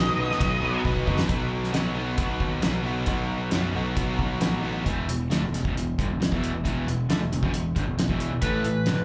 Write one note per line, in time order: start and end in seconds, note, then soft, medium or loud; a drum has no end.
0.00 0.63 B2 loud
0.00 1.05 B2 medium
0.00 0.63 D#3 medium
0.00 0.38 F#3 medium
0.00 1.06 F#3 loud
0.00 0.39 B3 medium
0.00 1.04 B3 loud
0.00 0.40 D#4 medium
0.00 0.41 B4 medium
0.00 0.81 D#5 loud
0.17 0.32 B1 medium
0.17 0.39 B2 medium
0.17 0.40 F#3 medium
0.17 0.40 B3 medium
0.31 snare soft
0.39 0.54 B1 medium
0.39 0.84 B2 medium
0.39 0.64 F#3 medium
0.39 0.63 B3 medium
0.39 0.62 D#4 medium
0.39 0.61 B4 medium
0.39 kick loud
0.39 ride bell medium
0.62 0.76 B1 loud
0.62 0.82 F#3 medium
0.62 0.84 B3 medium
0.62 0.85 D#4 medium
0.62 0.86 B4 medium
0.84 0.99 B1 medium
0.84 1.06 B2 medium
0.84 1.09 F#3 medium
0.84 1.08 B3 medium
0.84 1.07 D#4 medium
0.84 1.06 B4 medium
0.84 kick medium
0.96 kick medium
1.07 1.21 F#1 medium
1.07 1.28 B2 medium
1.07 1.26 B2 medium
1.07 1.28 F#3 medium
1.07 1.29 B3 medium
1.07 1.29 D#4 medium
1.07 1.28 B4 medium
1.07 kick medium
1.19 snare medium
1.28 1.72 B1 medium
1.28 1.73 B2 medium
1.28 1.73 F#3 medium
1.28 1.74 B3 medium
1.28 1.74 D#4 medium
1.28 1.75 F#4 medium
1.28 kick loud
1.28 closed hi-hat medium
1.64 snare soft
1.73 2.17 B1 medium
1.73 1.94 B2 medium
1.73 1.95 F#3 medium
1.73 1.95 B3 medium
1.73 1.96 D#4 medium
1.73 1.97 F#4 medium
1.73 snare medium
1.73 closed hi-hat medium
1.95 2.16 B2 medium
1.95 2.17 F#3 medium
1.95 2.18 B3 medium
1.95 2.18 D#4 medium
1.95 2.18 F#4 medium
2.17 2.39 B1 medium
2.17 2.60 B2 medium
2.17 2.61 F#3 medium
2.17 2.62 B3 loud
2.17 2.62 D#4 loud
2.17 2.62 F#4 loud
2.17 kick loud
2.17 closed hi-hat medium
2.40 2.62 D#2 medium
2.40 kick medium
2.61 3.07 B1 medium
2.61 2.83 B2 medium
2.61 2.84 F#3 medium
2.61 2.85 B3 medium
2.61 2.84 D#4 medium
2.61 2.85 F#4 medium
2.61 snare loud
2.61 closed hi-hat medium
2.84 3.06 B2 medium
2.84 3.06 F#3 medium
2.84 3.07 B3 medium
2.84 3.07 D#4 medium
2.84 3.08 F#4 medium
3.06 3.51 B1 medium
3.06 3.50 B2 medium
3.06 3.51 F#3 medium
3.06 3.51 B3 medium
3.06 3.51 D#4 medium
3.06 3.52 F#4 medium
3.06 kick medium
3.06 closed hi-hat medium
3.51 3.74 F#2 medium
3.51 3.73 B2 medium
3.51 3.74 F#3 medium
3.51 3.74 B3 medium
3.51 3.75 D#4 medium
3.51 3.75 F#4 medium
3.51 snare medium
3.51 closed hi-hat medium
3.74 3.96 B1 medium
3.74 3.95 B2 medium
3.74 3.95 F#3 medium
3.74 3.95 B3 medium
3.74 3.96 D#4 medium
3.74 3.97 F#4 medium
3.96 4.18 B1 medium
3.96 4.38 B2 medium
3.96 4.38 F#3 medium
3.96 4.39 B3 medium
3.96 4.40 D#4 loud
3.96 4.40 F#4 medium
3.96 kick loud
3.96 closed hi-hat medium
4.19 4.41 B1 medium
4.19 kick medium
4.39 4.84 A1 medium
4.39 4.61 B2 medium
4.39 4.62 F#3 medium
4.39 4.62 B3 medium
4.39 4.63 D#4 medium
4.39 4.63 F#4 medium
4.39 snare loud
4.39 closed hi-hat medium
4.62 4.84 B2 medium
4.62 4.84 F#3 medium
4.62 4.85 B3 medium
4.62 4.85 D#4 medium
4.62 4.85 F#4 medium
4.84 5.07 E1 medium
4.84 5.06 E2 medium
4.84 5.06 B2 medium
4.84 5.08 E3 medium
4.84 kick medium
4.84 closed hi-hat medium
5.07 5.29 E1 medium
5.07 5.26 E2 medium
5.07 5.26 B2 medium
5.07 closed hi-hat medium
5.30 5.41 D2 medium
5.30 5.41 D3 medium
5.30 5.41 A3 medium
5.30 snare medium
5.30 closed hi-hat medium
5.42 5.52 E1 medium
5.42 5.52 E2 medium
5.42 5.52 B2 medium
5.53 5.64 E1 medium
5.53 5.63 E2 medium
5.53 5.64 B2 medium
5.53 snare soft
5.53 closed hi-hat medium
5.64 5.75 E1 medium
5.64 5.74 E2 medium
5.64 5.74 B2 medium
5.64 kick medium
5.75 5.96 E1 medium
5.75 5.93 E2 medium
5.75 5.93 B2 medium
5.75 closed hi-hat medium
5.98 6.08 G1 medium
5.98 6.09 G2 medium
5.98 6.09 D3 medium
5.98 kick loud
5.98 closed hi-hat medium
6.09 6.19 E1 medium
6.09 6.19 E2 medium
6.09 6.20 B2 medium
6.20 6.31 E1 medium
6.20 6.31 E2 medium
6.20 6.31 B2 medium
6.20 snare loud
6.20 closed hi-hat medium
6.32 6.53 E1 medium
6.32 6.53 E2 medium
6.32 6.53 B2 medium
6.32 6.54 E3 medium
6.32 kick medium
6.43 closed hi-hat medium
6.54 6.64 E1 medium
6.54 6.63 E2 medium
6.54 6.64 B2 medium
6.64 6.86 E1 medium
6.64 6.86 E2 medium
6.64 6.87 B2 medium
6.64 6.87 E3 medium
6.64 kick medium
6.64 closed hi-hat medium
6.88 7.08 E1 medium
6.88 7.05 E2 medium
6.88 7.06 B2 medium
6.88 closed hi-hat medium
7.09 7.20 D2 medium
7.09 7.21 D3 medium
7.09 7.21 A3 medium
7.09 snare medium
7.09 closed hi-hat medium
7.21 7.31 E1 medium
7.21 7.32 E2 medium
7.21 7.32 B2 medium
7.33 7.42 E1 medium
7.33 7.43 E2 medium
7.33 7.44 B2 medium
7.33 closed hi-hat medium
7.42 7.53 E1 medium
7.42 7.53 E2 medium
7.42 7.53 B2 medium
7.42 kick loud
7.53 7.74 E1 medium
7.53 7.72 E2 medium
7.53 7.72 B2 medium
7.53 closed hi-hat medium
7.76 7.86 G1 medium
7.76 7.87 G2 medium
7.76 7.87 D3 medium
7.76 kick loud
7.76 closed hi-hat medium
7.87 7.98 E1 medium
7.87 7.98 E2 medium
7.87 7.98 B2 medium
7.99 8.09 E1 medium
7.99 8.08 E2 medium
7.99 8.09 B2 medium
7.99 snare medium
7.99 closed hi-hat medium
8.09 8.30 E1 medium
8.09 8.30 E2 medium
8.09 8.31 B2 medium
8.09 8.32 E3 medium
8.09 kick medium
8.20 closed hi-hat medium
8.31 8.41 E1 medium
8.31 8.43 E2 medium
8.31 8.43 B2 medium
8.42 8.63 A1 medium
8.42 8.64 A2 medium
8.42 8.65 E3 medium
8.42 8.66 A3 medium
8.42 9.05 B4 medium
8.42 kick medium
8.42 closed hi-hat medium
8.64 8.87 A1 medium
8.64 8.83 A2 medium
8.64 8.84 E3 medium
8.64 closed hi-hat medium
8.86 8.98 G1 medium
8.86 8.98 G2 medium
8.86 8.98 D3 medium
8.86 snare medium
8.86 closed hi-hat medium
8.98 9.05 A1 medium
8.98 9.05 A2 medium
8.98 9.05 E3 medium